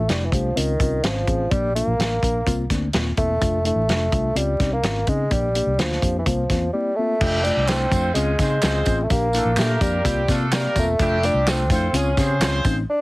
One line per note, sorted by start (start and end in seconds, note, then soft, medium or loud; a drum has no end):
0.00 0.11 A3 medium
0.09 0.28 F1 medium
0.09 0.27 G3 medium
0.09 0.25 A3 medium
0.09 0.25 D4 medium
0.09 0.25 E4 medium
0.09 snare medium
0.09 closed hi-hat medium
0.25 0.33 E3 medium
0.31 0.51 C2 medium
0.31 0.58 F3 medium
0.31 0.49 A3 medium
0.31 0.50 D4 medium
0.31 0.50 G4 medium
0.31 kick medium
0.31 closed hi-hat medium
0.55 0.75 C#2 medium
0.55 1.05 D#3 medium
0.55 0.72 C4 medium
0.55 0.73 C#4 medium
0.55 0.73 F4 medium
0.55 closed hi-hat loud
0.80 0.99 C2 medium
0.80 0.97 C4 medium
0.80 0.97 C#4 medium
0.80 0.97 F4 medium
0.80 kick medium
0.80 closed hi-hat medium
1.03 1.22 G#1 loud
1.03 1.53 F3 medium
1.03 1.20 C4 medium
1.03 1.20 C#4 medium
1.03 1.21 F4 medium
1.03 snare loud
1.03 closed hi-hat medium
1.27 1.46 A1 medium
1.27 1.44 C4 medium
1.27 1.44 C#4 medium
1.27 1.45 G#4 medium
1.27 kick medium
1.27 closed hi-hat medium
1.51 1.80 A#1 medium
1.51 1.75 G3 medium
1.51 1.68 A#3 medium
1.51 1.68 D4 medium
1.51 1.68 G4 loud
1.51 kick loud
1.51 closed hi-hat medium
1.75 2.66 A#3 medium
1.75 1.92 A#3 medium
1.75 1.92 D4 medium
1.75 1.92 F4 medium
1.75 closed hi-hat medium
1.87 1.96 A#1 medium
1.98 2.18 A1 medium
1.98 2.15 A#3 medium
1.98 2.16 D4 medium
1.98 2.16 A#4 medium
1.98 snare medium
1.98 closed hi-hat medium
2.22 2.41 A#1 medium
2.22 2.39 A#3 medium
2.22 2.40 D4 medium
2.22 2.40 A#4 medium
2.22 kick medium
2.22 closed hi-hat medium
2.46 2.65 C2 medium
2.46 2.63 A#3 loud
2.46 2.63 C4 loud
2.46 2.63 F4 loud
2.46 kick medium
2.46 closed hi-hat loud
2.70 2.89 D2 medium
2.70 2.87 A#3 medium
2.70 2.87 C4 medium
2.70 2.87 D4 loud
2.70 kick medium
2.70 snare soft
2.70 closed hi-hat medium
2.93 3.13 D#1 medium
2.93 3.11 A#3 medium
2.93 3.11 C4 medium
2.93 3.11 F4 medium
2.93 snare loud
2.93 closed hi-hat medium
3.17 3.37 E1 medium
3.17 3.62 A3 loud
3.17 3.34 A#3 medium
3.17 3.34 C4 medium
3.17 3.35 E4 medium
3.17 kick medium
3.17 closed hi-hat medium
3.41 3.69 F1 loud
3.41 3.58 A3 medium
3.41 3.58 D4 medium
3.41 3.58 F4 loud
3.41 kick loud
3.41 closed hi-hat medium
3.64 3.81 A3 medium
3.64 4.38 A3 medium
3.64 3.81 D4 medium
3.64 3.82 E4 medium
3.64 closed hi-hat medium
3.75 3.85 A1 medium
3.88 4.07 F1 medium
3.88 4.05 A3 medium
3.88 4.05 D4 medium
3.88 4.05 F4 medium
3.88 snare medium
3.88 closed hi-hat medium
4.12 4.31 C2 medium
4.12 4.29 A3 medium
4.12 4.29 D4 medium
4.12 4.29 F4 medium
4.12 kick medium
4.12 closed hi-hat medium
4.35 4.54 C#2 medium
4.35 4.74 G3 medium
4.35 4.52 C4 medium
4.35 4.52 C#4 medium
4.35 4.53 F4 loud
4.35 closed hi-hat loud
4.60 4.79 C2 medium
4.60 4.77 C4 medium
4.60 4.77 C#4 medium
4.60 4.77 D#4 medium
4.60 kick medium
4.60 snare soft
4.60 closed hi-hat medium
4.73 5.09 A#3 medium
4.83 5.02 G#1 medium
4.83 5.00 C4 medium
4.83 5.00 C#4 medium
4.83 5.01 F4 medium
4.83 snare loud
4.83 closed hi-hat medium
5.07 5.26 C#3 medium
5.07 5.33 G#3 medium
5.07 5.24 C4 medium
5.07 5.24 C#4 medium
5.07 5.25 D#4 medium
5.07 kick medium
5.07 closed hi-hat medium
5.30 5.59 A#1 medium
5.30 5.81 G3 medium
5.30 5.47 A#3 medium
5.30 5.48 D4 medium
5.30 5.48 G4 loud
5.30 kick medium
5.30 closed hi-hat medium
5.55 5.71 A#3 medium
5.55 5.72 D4 medium
5.55 5.72 G4 medium
5.55 closed hi-hat medium
5.66 5.76 C2 medium
5.78 5.97 D2 medium
5.78 6.18 F3 medium
5.78 5.95 A#3 medium
5.78 5.95 D4 medium
5.78 5.95 F4 medium
5.78 snare medium
5.78 closed hi-hat medium
5.92 snare soft
6.02 6.21 F2 medium
6.02 6.19 A#3 medium
6.02 6.19 D4 medium
6.02 6.19 G4 medium
6.02 kick medium
6.02 closed hi-hat medium
6.19 6.27 E3 soft
6.26 6.45 C2 medium
6.26 6.72 F3 medium
6.26 6.42 A#3 medium
6.26 6.43 C4 medium
6.26 6.43 F4 medium
6.26 kick medium
6.26 closed hi-hat medium
6.49 6.68 E2 medium
6.49 6.67 A#3 medium
6.49 6.67 C4 medium
6.49 6.67 F4 medium
6.49 kick medium
6.49 snare soft
6.49 closed hi-hat medium
6.73 6.97 G3 medium
6.73 6.90 A#3 medium
6.73 6.91 C4 medium
6.73 6.91 E4 medium
6.96 7.45 A3 loud
6.96 7.14 A#3 medium
6.96 7.15 C4 medium
6.96 7.15 F4 medium
7.20 7.49 F1 medium
7.20 7.65 G3 loud
7.20 7.38 A3 medium
7.20 7.65 C4 loud
7.20 7.65 D4 medium
7.20 7.38 D4 medium
7.20 7.39 F4 loud
7.20 7.65 G4 loud
7.20 kick loud
7.20 crash medium
7.44 7.62 A3 medium
7.44 7.69 D4 loud
7.44 7.62 D4 medium
7.44 7.62 F4 medium
7.44 closed hi-hat medium
7.44 tambourine soft
7.57 7.85 C2 medium
7.67 7.87 A3 medium
7.67 7.85 A3 medium
7.67 8.13 C4 medium
7.67 7.87 D4 medium
7.67 7.85 D4 medium
7.67 7.86 E4 medium
7.67 7.87 F4 medium
7.67 7.87 A4 medium
7.67 snare loud
7.67 clap medium
7.67 closed hi-hat medium
7.67 tambourine medium
7.91 8.10 F2 medium
7.91 8.09 A3 medium
7.91 8.11 C4 medium
7.91 8.09 D4 medium
7.91 8.11 F4 medium
7.91 8.09 F4 medium
7.91 8.11 A4 medium
7.91 8.11 C5 medium
7.91 kick medium
7.91 closed hi-hat medium
7.91 tambourine medium
8.14 8.34 C#2 medium
8.14 9.04 G#3 medium
8.14 8.34 G#3 medium
8.14 8.32 C4 loud
8.14 8.34 C#4 medium
8.14 8.32 C#4 medium
8.14 8.34 F4 medium
8.14 8.33 F4 loud
8.14 8.34 G#4 medium
8.14 closed hi-hat medium
8.14 tambourine medium
8.39 8.58 C#3 loud
8.39 8.59 C4 medium
8.39 8.56 C4 medium
8.39 8.56 C#4 medium
8.39 8.57 D#4 medium
8.39 8.58 F4 medium
8.39 8.58 G#4 medium
8.39 8.59 C5 medium
8.39 kick medium
8.39 snare soft
8.39 closed hi-hat medium
8.39 tambourine medium
8.62 8.82 C#2 medium
8.62 8.96 C4 loud
8.62 8.80 C4 medium
8.62 8.80 C#4 medium
8.62 8.96 F4 medium
8.62 8.80 F4 medium
8.62 8.96 G#4 medium
8.62 8.96 C5 loud
8.62 snare loud
8.62 clap medium
8.62 closed hi-hat loud
8.62 tambourine loud
8.86 9.05 A1 medium
8.86 9.03 C4 medium
8.86 9.03 C#4 medium
8.86 9.04 F4 medium
8.86 kick medium
8.86 closed hi-hat medium
8.86 tambourine medium
9.03 9.12 A3 medium
9.10 9.38 A#1 loud
9.10 9.59 A#3 medium
9.10 9.27 A#3 medium
9.10 9.27 D4 medium
9.10 9.27 G4 loud
9.10 kick loud
9.10 closed hi-hat medium
9.10 tambourine soft
9.33 9.53 A3 medium
9.33 9.50 A#3 medium
9.33 9.53 D4 medium
9.33 9.51 D4 medium
9.33 9.51 E4 medium
9.33 9.53 F4 medium
9.33 9.53 A4 medium
9.33 closed hi-hat medium
9.33 tambourine soft
9.45 9.55 A#1 medium
9.56 9.76 A#2 medium
9.56 9.75 A3 medium
9.56 10.02 A#3 medium
9.56 9.74 A#3 medium
9.56 9.74 D4 medium
9.56 10.02 F4 medium
9.56 10.02 G4 loud
9.56 9.75 G4 medium
9.56 10.02 A#4 loud
9.56 snare medium
9.56 clap medium
9.56 closed hi-hat medium
9.56 tambourine medium
9.75 9.82 A3 medium
9.81 10.00 F2 medium
9.81 10.37 G3 medium
9.81 9.98 A#3 medium
9.81 9.98 D4 medium
9.81 9.98 G4 medium
9.81 kick loud
9.81 closed hi-hat medium
9.81 tambourine medium
10.04 10.24 C2 loud
10.04 10.24 G3 medium
10.04 10.21 A#3 medium
10.04 10.24 A#3 medium
10.04 10.21 C4 medium
10.04 10.24 C4 medium
10.04 10.22 F4 loud
10.04 10.24 G4 medium
10.04 kick medium
10.04 closed hi-hat loud
10.04 tambourine soft
10.28 10.66 C3 loud
10.28 10.47 A3 medium
10.28 10.45 A#3 medium
10.28 10.45 C4 medium
10.28 10.48 D4 medium
10.28 10.48 F4 medium
10.28 10.46 F4 medium
10.28 10.47 A4 medium
10.28 kick medium
10.28 snare soft
10.28 closed hi-hat medium
10.28 tambourine medium
10.51 10.80 G3 medium
10.51 10.86 A#3 loud
10.51 10.69 A#3 medium
10.51 10.69 C4 medium
10.51 10.86 F4 medium
10.51 10.86 G4 medium
10.51 10.70 G4 medium
10.51 10.86 A#4 loud
10.51 snare loud
10.51 clap medium
10.51 closed hi-hat loud
10.51 tambourine loud
10.75 10.94 E1 medium
10.75 11.27 A3 loud
10.75 10.93 A#3 medium
10.75 10.93 C4 medium
10.75 10.93 F4 medium
10.75 kick medium
10.75 closed hi-hat medium
10.75 tambourine medium
10.99 11.28 F1 medium
10.99 11.44 G3 loud
10.99 11.17 A3 medium
10.99 11.44 C4 medium
10.99 11.44 D4 loud
10.99 11.17 D4 medium
10.99 11.17 F4 loud
10.99 11.44 G4 loud
10.99 kick loud
10.99 closed hi-hat medium
10.99 tambourine soft
11.23 11.40 A3 medium
11.23 11.40 D4 medium
11.23 11.50 D4 loud
11.23 11.40 F4 medium
11.23 closed hi-hat medium
11.23 tambourine soft
11.34 11.70 C2 medium
11.46 11.63 A3 medium
11.46 11.66 A3 medium
11.46 11.71 C4 medium
11.46 11.63 D4 medium
11.46 11.66 D4 medium
11.46 11.66 F4 medium
11.46 11.64 F4 medium
11.46 11.66 A4 medium
11.46 snare medium
11.46 clap medium
11.46 closed hi-hat medium
11.46 tambourine loud
11.70 11.89 F2 medium
11.70 11.87 A3 medium
11.70 11.90 C4 medium
11.70 11.87 C4 medium
11.70 11.87 D4 medium
11.70 11.88 E4 medium
11.70 11.90 F4 medium
11.70 11.90 A4 medium
11.70 11.90 C5 medium
11.70 kick loud
11.70 closed hi-hat medium
11.70 tambourine medium
11.87 11.97 C4 medium
11.93 12.12 C#2 loud
11.93 12.13 G#3 medium
11.93 12.10 C4 medium
11.93 12.11 C#4 medium
11.93 12.13 C#4 medium
11.93 12.63 C#4 medium
11.93 12.13 F4 medium
11.93 12.11 F4 loud
11.93 12.13 G#4 medium
11.93 closed hi-hat loud
11.93 tambourine medium
12.17 12.41 C#3 medium
12.17 12.34 C4 medium
12.17 12.37 C4 medium
12.17 12.34 C#4 medium
12.17 12.37 F4 medium
12.17 12.34 G4 medium
12.17 12.37 G#4 medium
12.17 12.37 C5 medium
12.17 kick medium
12.17 snare soft
12.17 closed hi-hat medium
12.17 tambourine medium
12.39 12.59 C#2 loud
12.39 12.75 C4 loud
12.39 12.58 C4 medium
12.39 12.58 C#4 medium
12.39 12.74 F4 loud
12.39 12.58 F4 medium
12.39 12.75 G#4 loud
12.39 12.75 C5 loud
12.39 snare loud
12.39 clap loud
12.39 closed hi-hat loud
12.39 tambourine loud
12.65 12.84 A1 medium
12.65 12.82 C4 medium
12.65 12.82 C#4 medium
12.65 12.82 D#4 loud
12.65 kick medium
12.65 closed hi-hat medium
12.65 tambourine medium
12.90 13.01 D4 medium